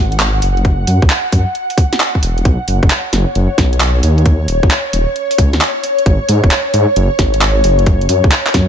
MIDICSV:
0, 0, Header, 1, 4, 480
1, 0, Start_track
1, 0, Tempo, 451128
1, 689, Time_signature, 4, 2, 24, 8
1, 9238, End_track
2, 0, Start_track
2, 0, Title_t, "Ambient pad"
2, 0, Program_c, 0, 92
2, 0, Note_on_c, 0, 78, 89
2, 2610, Note_on_c, 0, 73, 89
2, 2622, Note_off_c, 0, 78, 0
2, 9238, Note_off_c, 0, 73, 0
2, 9238, End_track
3, 0, Start_track
3, 0, Title_t, "Detuned saw bass"
3, 0, Program_c, 1, 39
3, 0, Note_on_c, 1, 32, 89
3, 428, Note_off_c, 1, 32, 0
3, 449, Note_on_c, 1, 30, 90
3, 908, Note_off_c, 1, 30, 0
3, 929, Note_on_c, 1, 42, 98
3, 1062, Note_off_c, 1, 42, 0
3, 1089, Note_on_c, 1, 37, 92
3, 1156, Note_off_c, 1, 37, 0
3, 1409, Note_on_c, 1, 42, 92
3, 1542, Note_off_c, 1, 42, 0
3, 2369, Note_on_c, 1, 28, 84
3, 2583, Note_off_c, 1, 28, 0
3, 2610, Note_on_c, 1, 35, 97
3, 2743, Note_off_c, 1, 35, 0
3, 2849, Note_on_c, 1, 30, 91
3, 2982, Note_off_c, 1, 30, 0
3, 3009, Note_on_c, 1, 30, 93
3, 3076, Note_off_c, 1, 30, 0
3, 3328, Note_on_c, 1, 30, 96
3, 3462, Note_off_c, 1, 30, 0
3, 3568, Note_on_c, 1, 30, 91
3, 3702, Note_off_c, 1, 30, 0
3, 3809, Note_on_c, 1, 35, 89
3, 4268, Note_off_c, 1, 35, 0
3, 4289, Note_on_c, 1, 39, 92
3, 4748, Note_off_c, 1, 39, 0
3, 4768, Note_on_c, 1, 27, 95
3, 4902, Note_off_c, 1, 27, 0
3, 4928, Note_on_c, 1, 34, 95
3, 4996, Note_off_c, 1, 34, 0
3, 5247, Note_on_c, 1, 27, 94
3, 5381, Note_off_c, 1, 27, 0
3, 5728, Note_on_c, 1, 37, 103
3, 5887, Note_on_c, 1, 39, 94
3, 5903, Note_off_c, 1, 37, 0
3, 5955, Note_off_c, 1, 39, 0
3, 6448, Note_on_c, 1, 32, 96
3, 6582, Note_off_c, 1, 32, 0
3, 6689, Note_on_c, 1, 44, 100
3, 6822, Note_off_c, 1, 44, 0
3, 6848, Note_on_c, 1, 27, 93
3, 6916, Note_off_c, 1, 27, 0
3, 7169, Note_on_c, 1, 44, 93
3, 7302, Note_off_c, 1, 44, 0
3, 7408, Note_on_c, 1, 30, 93
3, 7542, Note_off_c, 1, 30, 0
3, 7648, Note_on_c, 1, 32, 85
3, 8108, Note_off_c, 1, 32, 0
3, 8129, Note_on_c, 1, 30, 94
3, 8588, Note_off_c, 1, 30, 0
3, 8609, Note_on_c, 1, 42, 97
3, 8742, Note_off_c, 1, 42, 0
3, 8768, Note_on_c, 1, 37, 95
3, 8836, Note_off_c, 1, 37, 0
3, 9089, Note_on_c, 1, 42, 99
3, 9222, Note_off_c, 1, 42, 0
3, 9238, End_track
4, 0, Start_track
4, 0, Title_t, "Drums"
4, 128, Note_on_c, 9, 42, 61
4, 209, Note_off_c, 9, 42, 0
4, 209, Note_on_c, 9, 39, 125
4, 209, Note_on_c, 9, 42, 60
4, 315, Note_off_c, 9, 39, 0
4, 315, Note_off_c, 9, 42, 0
4, 448, Note_on_c, 9, 46, 106
4, 555, Note_off_c, 9, 46, 0
4, 609, Note_on_c, 9, 42, 35
4, 690, Note_off_c, 9, 42, 0
4, 690, Note_on_c, 9, 36, 121
4, 690, Note_on_c, 9, 42, 59
4, 796, Note_off_c, 9, 36, 0
4, 796, Note_off_c, 9, 42, 0
4, 930, Note_on_c, 9, 46, 103
4, 1036, Note_off_c, 9, 46, 0
4, 1089, Note_on_c, 9, 36, 111
4, 1169, Note_on_c, 9, 39, 127
4, 1169, Note_on_c, 9, 42, 61
4, 1195, Note_off_c, 9, 36, 0
4, 1276, Note_off_c, 9, 39, 0
4, 1276, Note_off_c, 9, 42, 0
4, 1409, Note_on_c, 9, 36, 66
4, 1409, Note_on_c, 9, 46, 106
4, 1516, Note_off_c, 9, 36, 0
4, 1516, Note_off_c, 9, 46, 0
4, 1650, Note_on_c, 9, 42, 60
4, 1756, Note_off_c, 9, 42, 0
4, 1810, Note_on_c, 9, 46, 57
4, 1889, Note_on_c, 9, 36, 115
4, 1890, Note_off_c, 9, 46, 0
4, 1890, Note_on_c, 9, 46, 98
4, 1996, Note_off_c, 9, 36, 0
4, 1996, Note_off_c, 9, 46, 0
4, 2049, Note_on_c, 9, 38, 54
4, 2049, Note_on_c, 9, 42, 61
4, 2130, Note_off_c, 9, 42, 0
4, 2130, Note_on_c, 9, 39, 125
4, 2130, Note_on_c, 9, 42, 65
4, 2156, Note_off_c, 9, 38, 0
4, 2236, Note_off_c, 9, 39, 0
4, 2236, Note_off_c, 9, 42, 0
4, 2288, Note_on_c, 9, 36, 61
4, 2370, Note_on_c, 9, 46, 102
4, 2395, Note_off_c, 9, 36, 0
4, 2476, Note_off_c, 9, 46, 0
4, 2529, Note_on_c, 9, 42, 36
4, 2609, Note_off_c, 9, 42, 0
4, 2609, Note_on_c, 9, 36, 117
4, 2609, Note_on_c, 9, 42, 67
4, 2716, Note_off_c, 9, 36, 0
4, 2716, Note_off_c, 9, 42, 0
4, 2849, Note_on_c, 9, 46, 100
4, 2955, Note_off_c, 9, 46, 0
4, 3008, Note_on_c, 9, 36, 108
4, 3089, Note_on_c, 9, 39, 111
4, 3089, Note_on_c, 9, 42, 67
4, 3115, Note_off_c, 9, 36, 0
4, 3195, Note_off_c, 9, 39, 0
4, 3195, Note_off_c, 9, 42, 0
4, 3329, Note_on_c, 9, 38, 53
4, 3329, Note_on_c, 9, 46, 104
4, 3435, Note_off_c, 9, 38, 0
4, 3435, Note_off_c, 9, 46, 0
4, 3569, Note_on_c, 9, 42, 63
4, 3675, Note_off_c, 9, 42, 0
4, 3809, Note_on_c, 9, 36, 105
4, 3809, Note_on_c, 9, 38, 63
4, 3809, Note_on_c, 9, 46, 102
4, 3915, Note_off_c, 9, 36, 0
4, 3916, Note_off_c, 9, 38, 0
4, 3916, Note_off_c, 9, 46, 0
4, 3968, Note_on_c, 9, 42, 63
4, 4048, Note_off_c, 9, 42, 0
4, 4048, Note_on_c, 9, 39, 122
4, 4048, Note_on_c, 9, 42, 66
4, 4154, Note_off_c, 9, 39, 0
4, 4154, Note_off_c, 9, 42, 0
4, 4289, Note_on_c, 9, 46, 97
4, 4395, Note_off_c, 9, 46, 0
4, 4447, Note_on_c, 9, 42, 37
4, 4528, Note_off_c, 9, 42, 0
4, 4528, Note_on_c, 9, 42, 61
4, 4529, Note_on_c, 9, 36, 109
4, 4635, Note_off_c, 9, 36, 0
4, 4635, Note_off_c, 9, 42, 0
4, 4769, Note_on_c, 9, 46, 101
4, 4875, Note_off_c, 9, 46, 0
4, 4928, Note_on_c, 9, 36, 107
4, 5009, Note_on_c, 9, 39, 112
4, 5009, Note_on_c, 9, 42, 68
4, 5034, Note_off_c, 9, 36, 0
4, 5115, Note_off_c, 9, 39, 0
4, 5115, Note_off_c, 9, 42, 0
4, 5248, Note_on_c, 9, 46, 104
4, 5355, Note_off_c, 9, 46, 0
4, 5488, Note_on_c, 9, 42, 64
4, 5595, Note_off_c, 9, 42, 0
4, 5648, Note_on_c, 9, 46, 59
4, 5729, Note_off_c, 9, 46, 0
4, 5729, Note_on_c, 9, 36, 107
4, 5729, Note_on_c, 9, 46, 103
4, 5835, Note_off_c, 9, 36, 0
4, 5836, Note_off_c, 9, 46, 0
4, 5888, Note_on_c, 9, 38, 52
4, 5888, Note_on_c, 9, 42, 71
4, 5969, Note_off_c, 9, 42, 0
4, 5969, Note_on_c, 9, 39, 115
4, 5969, Note_on_c, 9, 42, 67
4, 5995, Note_off_c, 9, 38, 0
4, 6076, Note_off_c, 9, 39, 0
4, 6076, Note_off_c, 9, 42, 0
4, 6209, Note_on_c, 9, 46, 106
4, 6315, Note_off_c, 9, 46, 0
4, 6368, Note_on_c, 9, 42, 38
4, 6449, Note_off_c, 9, 42, 0
4, 6449, Note_on_c, 9, 36, 112
4, 6449, Note_on_c, 9, 42, 70
4, 6555, Note_off_c, 9, 36, 0
4, 6555, Note_off_c, 9, 42, 0
4, 6688, Note_on_c, 9, 46, 113
4, 6795, Note_off_c, 9, 46, 0
4, 6848, Note_on_c, 9, 36, 104
4, 6928, Note_on_c, 9, 39, 112
4, 6928, Note_on_c, 9, 42, 68
4, 6954, Note_off_c, 9, 36, 0
4, 7035, Note_off_c, 9, 39, 0
4, 7035, Note_off_c, 9, 42, 0
4, 7168, Note_on_c, 9, 46, 111
4, 7275, Note_off_c, 9, 46, 0
4, 7408, Note_on_c, 9, 42, 67
4, 7515, Note_off_c, 9, 42, 0
4, 7648, Note_on_c, 9, 38, 63
4, 7648, Note_on_c, 9, 46, 103
4, 7649, Note_on_c, 9, 36, 102
4, 7755, Note_off_c, 9, 36, 0
4, 7755, Note_off_c, 9, 38, 0
4, 7755, Note_off_c, 9, 46, 0
4, 7808, Note_on_c, 9, 42, 65
4, 7889, Note_off_c, 9, 42, 0
4, 7889, Note_on_c, 9, 39, 112
4, 7889, Note_on_c, 9, 42, 69
4, 7995, Note_off_c, 9, 39, 0
4, 7995, Note_off_c, 9, 42, 0
4, 8128, Note_on_c, 9, 46, 108
4, 8235, Note_off_c, 9, 46, 0
4, 8287, Note_on_c, 9, 42, 39
4, 8367, Note_off_c, 9, 42, 0
4, 8367, Note_on_c, 9, 42, 66
4, 8369, Note_on_c, 9, 36, 114
4, 8474, Note_off_c, 9, 42, 0
4, 8475, Note_off_c, 9, 36, 0
4, 8527, Note_on_c, 9, 42, 35
4, 8608, Note_on_c, 9, 46, 112
4, 8634, Note_off_c, 9, 42, 0
4, 8714, Note_off_c, 9, 46, 0
4, 8768, Note_on_c, 9, 36, 108
4, 8848, Note_on_c, 9, 39, 112
4, 8848, Note_on_c, 9, 42, 66
4, 8875, Note_off_c, 9, 36, 0
4, 8954, Note_off_c, 9, 39, 0
4, 8954, Note_off_c, 9, 42, 0
4, 9007, Note_on_c, 9, 39, 61
4, 9088, Note_on_c, 9, 38, 57
4, 9088, Note_on_c, 9, 46, 107
4, 9089, Note_on_c, 9, 36, 59
4, 9113, Note_off_c, 9, 39, 0
4, 9194, Note_off_c, 9, 38, 0
4, 9194, Note_off_c, 9, 46, 0
4, 9196, Note_off_c, 9, 36, 0
4, 9238, End_track
0, 0, End_of_file